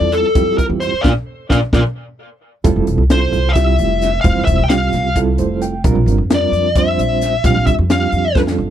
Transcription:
Already playing: reed electric piano G3 C4 E4 F4 A4, lead electric guitar D5
0.00 upright bass E2
0.12 lead electric guitar A4, closed hi-hat
0.35 upright bass F2, reed electric piano G3 C4 E4 F4 G4, kick, closed hi-hat
0.58 lead electric guitar A#4, muted upright bass stroke, kick, closed hi-hat
0.70 upright bass E2
0.80 lead electric guitar C5, closed hi-hat
0.93 muted upright bass stroke
1.01 upright bass A#1, reed electric piano A#3 D4 F4, lead electric guitar A#4 D5 F5, kick, snare
1.50 upright bass A#1, reed electric piano A#3 D4 F4, lead electric guitar A#4 D5 F5, kick, snare
1.73 upright bass A#1, reed electric piano A#3 D4 F4, lead electric guitar A#4 D5 F5, kick, snare
2.64 upright bass F1, reed electric piano G3 C4 E4 F4 A4, kick, closed hi-hat
2.76 upright bass F1
2.87 upright bass E1, closed hi-hat
2.98 upright bass C2
3.09 reed electric piano G3 C4 E4 F4 A4, lead electric guitar C5, snare, closed hi-hat
3.32 upright bass C2, closed hi-hat
3.49 lead electric guitar F5
3.53 reed electric piano G3 C4 E4 F4 G4, lead electric guitar E5, kick, snare, closed hi-hat
3.78 upright bass F1, closed hi-hat
4.02 snare, closed hi-hat
4.21 upright bass F1, reed electric piano G3 C4 E4 F4 C5, lead electric guitar F5, kick, closed hi-hat
4.36 upright bass F1
4.45 upright bass E1, lead electric guitar E5, kick, closed hi-hat
4.59 upright bass C2
4.64 lead electric guitar G5
4.69 reed electric piano G3 C4 F4 G4, lead electric guitar F5, snare, closed hi-hat
4.93 upright bass C2, snare, closed hi-hat
5.16 reed electric piano G3 C4 E4 F4 A4, kick, closed hi-hat
5.38 upright bass F1, reed electric piano C5, closed hi-hat
5.62 reed electric piano G5, closed hi-hat
5.84 upright bass A#1, reed electric piano G3 C4 D4 F4 A#4, kick, closed hi-hat
5.95 upright bass A#1
6.06 upright bass G1, closed hi-hat
6.18 upright bass F2
6.30 reed electric piano G3 C4 D4 F4 A#4, snare, closed hi-hat
6.34 lead electric guitar D5
6.52 upright bass F2, closed hi-hat
6.75 reed electric piano G3 C4 D4 F4 C5, lead electric guitar E5, kick, closed hi-hat
6.98 upright bass A#1, closed hi-hat
7.21 snare, closed hi-hat
7.44 upright bass A#1, reed electric piano G3 C4 D4 F4 G4, lead electric guitar F5, kick, closed hi-hat
7.55 upright bass A#1
7.67 upright bass G1, lead electric guitar E5, kick, closed hi-hat
7.78 upright bass F2
7.90 reed electric piano G3 C4 D4 F4 G4, lead electric guitar F5, snare, closed hi-hat
8.12 upright bass F2, closed hi-hat
8.35 reed electric piano G3 C4 D4 F4 A4, kick, snare
8.47 snare
8.58 upright bass G1

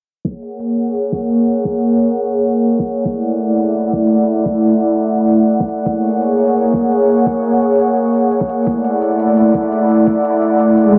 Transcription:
0.25 analog synth pad A#3 G#4 C#5 F#5, kick, closed hi-hat
0.42 closed hi-hat
0.60 closed hi-hat
0.77 closed hi-hat
0.95 closed hi-hat
1.12 kick, closed hi-hat
1.30 closed hi-hat
1.48 closed hi-hat
1.65 kick, closed hi-hat
1.83 closed hi-hat
2.00 closed hi-hat
2.18 closed hi-hat
2.35 closed hi-hat
2.53 closed hi-hat
2.70 closed hi-hat
2.80 kick
2.88 closed hi-hat
3.05 analog synth pad A3 E4 D5 F#5, kick, closed hi-hat
3.23 closed hi-hat
3.40 closed hi-hat
3.58 closed hi-hat
3.75 closed hi-hat
3.93 kick, closed hi-hat
4.11 closed hi-hat
4.28 closed hi-hat
4.46 kick, closed hi-hat
4.63 closed hi-hat
4.81 closed hi-hat
4.98 closed hi-hat
5.16 closed hi-hat
5.34 closed hi-hat
5.51 closed hi-hat
5.60 kick
5.69 closed hi-hat
5.86 analog synth pad A#3 G#4 C#5, kick, closed hi-hat
6.04 closed hi-hat
6.21 closed hi-hat
6.39 closed hi-hat
6.56 closed hi-hat
6.74 kick, closed hi-hat
6.91 closed hi-hat
7.09 closed hi-hat
7.26 kick, closed hi-hat
7.44 closed hi-hat
7.62 closed hi-hat
7.79 closed hi-hat
7.97 closed hi-hat
8.14 closed hi-hat
8.32 closed hi-hat
8.41 kick
8.49 closed hi-hat
8.67 analog synth pad A3 E4 D5 F#5, kick, closed hi-hat
8.85 closed hi-hat
9.02 closed hi-hat
9.20 closed hi-hat
9.37 closed hi-hat
9.55 kick, closed hi-hat
9.72 closed hi-hat
9.90 closed hi-hat
10.07 kick, closed hi-hat
10.25 closed hi-hat
10.42 closed hi-hat
10.60 closed hi-hat
10.77 closed hi-hat, swell
10.95 kick, closed hi-hat

